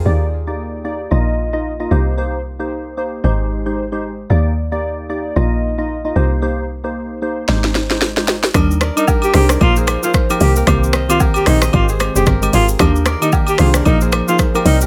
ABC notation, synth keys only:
X:1
M:4/4
L:1/16
Q:"Swing 16ths" 1/4=113
K:Eb
V:1 name="Synth keys"
[B,EGd]2 z [B,EGd]3 [B,EGd]2 [B,EFe]3 [B,EFe] z [B,EFe] [B,EGc]2 | [B,EGc]2 z [B,EGc]3 [B,EGc]2 [A,EGc]3 [A,EGc] z [A,EGc] z2 | [B,EGd]2 z [B,EGd]3 [B,EGd]2 [B,EFe]3 [B,EFe] z [B,EFe] [B,EGc]2 | [B,EGc]2 z [B,EGc]3 [B,EGc]2 [A,EGc]3 [A,EGc] z [A,EGc] z2 |
[G,DEB]2 z [G,DEB]3 [G,DEB]2 [F,B,EB]3 [F,B,EB] z [F,B,EB] [E,B,CG]2 | [E,B,CG]2 z [E,B,CG]3 [E,B,CG]2 [E,A,CG]3 [E,A,CG] z [E,A,CG] z2 | [E,B,DG]2 z [E,B,DG]3 [E,B,DG]2 [F,B,EB]3 [F,B,EB] z [F,B,EB] [G,CEB]2 |]